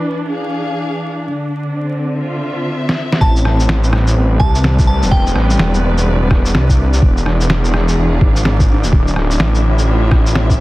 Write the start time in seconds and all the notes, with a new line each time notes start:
Already playing: E3 D4 B4
0.28 G#4 F5
1.30 D3
1.70 C4
2.19 F4 E5
2.89 snare
3.12 snare
3.21 A1 A2 D4 D5 A5, kick
3.36 shaker
3.45 cross-stick
3.60 shaker
3.67 G3, snare
3.77 B4
3.84 shaker
3.93 cross-stick
4.06 D5, shaker
4.16 A1
4.40 C2 A5, kick
4.55 shaker
4.64 snare
4.79 kick, shaker
4.87 A5
5.03 E1, shaker
5.11 G5, kick
5.27 shaker
5.35 A1, cross-stick
5.50 shaker
5.59 E1, snare
5.74 shaker
5.98 shaker
6.31 kick, cross-stick
6.46 shaker
6.54 C2, snare
6.69 kick, shaker
6.94 shaker
7.02 E1 E3, kick
7.17 shaker
7.26 cross-stick
7.41 shaker
7.50 G#4, snare
7.65 shaker
7.70 D4, cross-stick
7.89 F5, shaker
7.97 E1
8.21 G#1, kick
8.36 shaker
8.45 snare
8.60 kick, shaker
8.83 D1, shaker
8.92 D3, kick
9.08 shaker
9.15 D1 E5, cross-stick
9.31 shaker
9.37 A1 C4, snare
9.55 shaker
9.79 F4, shaker
10.11 kick, cross-stick
10.27 shaker
10.35 snare
10.50 kick, shaker